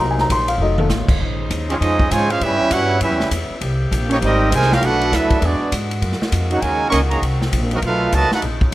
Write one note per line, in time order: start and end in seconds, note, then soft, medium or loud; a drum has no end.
0.00 0.28 C2 medium
0.00 0.59 C3 medium
0.00 0.45 F#3 soft
0.00 1.19 F#3 medium
0.00 0.45 A#3 soft
0.00 0.59 A#3 medium
0.00 0.45 D#4 medium
0.00 0.58 D#4 medium
0.11 0.20 G#5 medium
0.18 0.30 A#5 medium
0.18 snare soft
0.30 0.57 A#1 loud
0.30 0.49 C6 loud
0.30 kick soft
0.30 hi-hat pedal medium
0.30 ride medium
0.48 0.59 F5 medium
0.48 ride medium
0.58 0.88 F1 medium
0.58 1.19 D#3 medium
0.58 0.82 F#3 medium
0.58 1.19 A3 medium
0.58 0.83 A3 soft
0.58 1.19 F4 medium
0.62 0.83 D#4 medium
0.62 0.79 D#5 medium
0.78 0.86 A4 medium
0.78 high tom medium
0.89 1.00 A1 loud
0.89 snare medium
0.89 hi-hat pedal medium
0.99 1.09 F1 medium
1.08 1.19 D#1 medium
1.08 kick medium
1.08 crash medium
1.18 1.49 A#1 medium
1.18 2.25 C#3 medium
1.18 2.25 G#3 medium
1.18 2.25 D#4 medium
1.18 2.25 C5 medium
1.18 kick soft
1.50 1.79 D#2 loud
1.50 kick soft
1.50 hi-hat pedal medium
1.50 ride medium
1.69 1.74 F3 medium
1.69 1.74 G#3 medium
1.69 1.76 G#3 medium
1.69 1.76 C4 medium
1.69 1.74 C#4 medium
1.69 1.75 F4 medium
1.69 1.76 C#5 medium
1.69 ride medium
1.81 2.09 F2 medium
1.81 2.09 F3 medium
1.81 2.09 G#3 medium
1.81 2.08 C#4 medium
1.81 2.09 D#4 medium
1.81 2.09 G#4 medium
1.81 2.09 C5 medium
1.81 2.08 D#5 loud
1.81 kick soft
1.81 ride medium
2.00 kick medium
2.11 2.40 G#2 loud
2.11 2.29 C#3 medium
2.11 2.29 F3 medium
2.11 2.29 G#3 loud
2.11 2.30 F4 loud
2.11 2.30 C5 medium
2.11 2.30 C#5 loud
2.11 2.29 G#5 loud
2.11 kick soft
2.11 hi-hat pedal medium
2.11 ride medium
2.30 2.41 G#3 medium
2.30 2.41 C#4 medium
2.30 2.41 F4 medium
2.30 2.41 G#4 medium
2.30 2.41 C5 medium
2.30 2.41 F5 loud
2.30 ride medium
2.41 2.50 A2 medium
2.41 3.60 C#3 medium
2.41 3.59 G3 medium
2.41 2.70 G3 medium
2.41 3.61 B3 medium
2.41 2.71 C#4 medium
2.41 2.70 C#4 medium
2.41 2.71 E4 medium
2.41 3.60 E4 medium
2.41 2.72 G4 medium
2.41 2.71 B4 medium
2.41 2.72 E5 loud
2.41 kick soft
2.41 ride medium
2.50 2.59 G2 medium
2.60 2.69 E2 medium
2.70 3.00 G2 loud
2.70 3.00 G3 medium
2.70 3.00 C#4 medium
2.70 3.02 E4 medium
2.70 3.01 F#4 medium
2.70 3.01 B4 medium
2.70 3.02 C#5 medium
2.70 3.02 F#5 loud
2.70 kick soft
2.70 hi-hat pedal medium
2.70 ride medium
3.01 3.11 F#2 medium
3.01 3.29 G3 medium
3.01 3.29 C#4 medium
3.01 3.30 C#4 medium
3.01 3.29 E4 medium
3.01 3.29 G4 medium
3.01 3.30 B4 medium
3.01 3.29 E5 medium
3.01 kick soft
3.01 ride medium
3.11 3.20 E2 medium
3.20 3.30 C#2 medium
3.20 snare soft
3.31 3.48 E2 loud
3.31 kick soft
3.31 hi-hat pedal medium
3.31 ride medium
3.50 muted upright bass stroke soft
3.60 3.90 C2 medium
3.60 4.80 C3 medium
3.60 4.80 G3 medium
3.60 4.80 A#3 medium
3.60 4.80 G4 loud
3.60 kick soft
3.60 ride medium
3.91 4.20 A#1 loud
3.91 kick soft
3.91 hi-hat pedal medium
3.91 ride medium
4.10 4.16 A#3 medium
4.10 4.15 C#4 medium
4.10 4.17 D#4 medium
4.10 4.17 G4 medium
4.10 4.16 C#5 medium
4.10 ride medium
4.21 4.50 G#1 loud
4.21 4.49 G3 medium
4.21 4.49 C4 medium
4.21 4.49 D#4 medium
4.21 4.51 D#5 loud
4.21 kick soft
4.21 ride medium
4.25 4.51 C4 medium
4.25 4.51 G4 medium
4.25 4.51 A#4 medium
4.51 4.81 C2 loud
4.51 4.70 C3 medium
4.51 4.70 D#3 medium
4.51 4.70 G#3 medium
4.51 4.72 A#4 loud
4.51 4.72 C5 loud
4.51 4.72 G#5 loud
4.51 kick soft
4.51 hi-hat pedal medium
4.51 ride medium
4.56 4.72 D#4 loud
4.62 snare soft
4.72 4.83 C#4 medium
4.72 4.82 F4 medium
4.72 4.83 G4 medium
4.72 4.83 A#4 medium
4.72 4.83 F5 loud
4.72 snare medium
4.79 5.11 B1 medium
4.79 5.40 D3 medium
4.79 5.40 A3 medium
4.79 5.12 A3 medium
4.79 5.40 B3 medium
4.79 5.12 D4 medium
4.79 7.79 F#4 medium
4.79 5.12 F#4 medium
4.79 kick soft
4.79 ride medium
4.85 5.13 D4 medium
4.85 5.13 A4 medium
4.85 5.13 B4 medium
4.85 5.13 F#5 loud
5.01 ride medium
5.12 5.29 D2 loud
5.12 5.42 F#3 medium
5.12 5.42 A3 medium
5.12 5.43 D4 medium
5.12 5.42 E4 medium
5.12 5.44 A4 medium
5.12 5.43 B4 medium
5.12 5.44 E5 medium
5.12 kick soft
5.12 snare soft
5.12 hi-hat pedal medium
5.12 ride medium
5.30 muted upright bass stroke soft
5.30 kick medium
5.30 ride medium
5.42 5.59 E2 medium
5.42 6.02 E3 medium
5.42 6.00 G#3 medium
5.42 5.72 G#3 medium
5.42 5.72 B3 medium
5.42 5.73 B3 medium
5.42 5.72 D4 medium
5.42 6.02 D4 medium
5.42 5.73 F#4 medium
5.42 5.73 G#4 medium
5.42 5.73 D5 medium
5.42 kick soft
5.42 ride medium
5.61 muted upright bass stroke soft
5.72 6.01 G#2 loud
5.72 kick soft
5.72 hi-hat pedal medium
5.72 ride medium
5.91 ride medium
6.01 6.19 F#2 medium
6.01 7.19 D#3 medium
6.01 7.21 G#3 medium
6.01 7.21 A#3 medium
6.01 kick soft
6.01 ride medium
6.12 snare soft
6.21 muted upright bass stroke soft
6.21 snare medium
6.32 6.61 F2 loud
6.32 kick soft
6.32 hi-hat pedal medium
6.32 ride medium
6.50 6.61 C#4 medium
6.50 6.61 D#4 medium
6.50 6.60 D#4 medium
6.50 6.61 F#4 medium
6.50 6.60 A#4 medium
6.50 6.60 C#5 medium
6.50 6.63 F#5 medium
6.50 ride medium
6.61 6.91 D#2 medium
6.61 6.92 C#3 medium
6.61 6.89 D#3 medium
6.61 6.92 G#3 medium
6.61 6.92 D#4 medium
6.61 6.89 A#4 medium
6.61 6.92 C#5 medium
6.61 6.90 G#5 loud
6.61 kick soft
6.61 ride medium
6.90 7.21 C#2 loud
6.90 6.99 D#3 medium
6.90 6.99 A#3 medium
6.90 6.99 C#4 medium
6.90 6.99 A#4 loud
6.90 6.99 D#5 loud
6.90 7.00 G#5 loud
6.90 6.99 C#6 loud
6.90 kick soft
6.90 hi-hat pedal medium
6.90 ride medium
7.09 7.21 C#3 medium
7.09 7.21 D#3 medium
7.09 7.21 A#3 medium
7.09 7.21 G#4 medium
7.09 7.21 C#5 medium
7.09 7.21 D#5 medium
7.09 7.21 A#5 medium
7.09 ride medium
7.21 7.51 C2 medium
7.21 8.41 D#3 medium
7.21 7.82 A#3 medium
7.21 7.82 C4 medium
7.21 kick soft
7.21 ride medium
7.42 snare soft
7.52 7.82 A#1 loud
7.52 kick soft
7.52 hi-hat pedal medium
7.52 ride medium
7.71 7.78 F#3 medium
7.71 7.78 A#3 medium
7.71 7.78 C4 medium
7.71 7.78 D#4 medium
7.71 7.78 F#4 medium
7.71 7.79 A#4 medium
7.71 7.78 D#5 medium
7.71 ride medium
7.80 8.12 B1 medium
7.80 8.41 A3 medium
7.80 8.41 B3 medium
7.80 8.41 F4 medium
7.80 kick soft
7.80 ride medium
7.85 8.12 F#3 medium
7.85 8.12 A3 medium
7.85 8.13 D#4 medium
7.85 8.12 F4 medium
7.85 8.12 A4 medium
7.85 8.13 B4 medium
7.85 8.13 F5 medium
8.12 8.30 C#2 loud
8.12 8.32 D#3 medium
8.12 8.32 F#3 medium
8.12 8.30 A3 medium
8.12 8.32 F#4 loud
8.12 8.32 B4 loud
8.12 8.32 D#5 loud
8.12 8.32 A5 loud
8.12 kick soft
8.12 hi-hat pedal medium
8.12 ride medium
8.31 8.42 A3 medium
8.31 8.42 D#4 medium
8.31 8.43 D#4 medium
8.31 8.42 F#4 medium
8.31 8.43 A4 medium
8.31 8.43 B4 medium
8.31 8.43 F#5 medium
8.31 muted upright bass stroke soft
8.31 snare medium
8.42 8.72 A#1 medium
8.42 8.74 C#3 medium
8.42 8.74 G#3 medium
8.42 8.74 C#4 medium
8.42 8.74 D#4 medium
8.42 kick soft
8.42 ride medium
8.61 kick medium